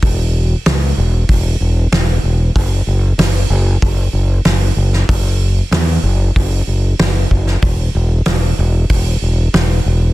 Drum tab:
HH |o---o---o---o---|o---o---o---o---|o---o---o---o---|o---o---o---o---|
SD |----o-------o---|----o-------o--o|----o-------o--o|----o-------o---|
BD |o-------o-------|o-------o-------|o-------o-----o-|o-------o-------|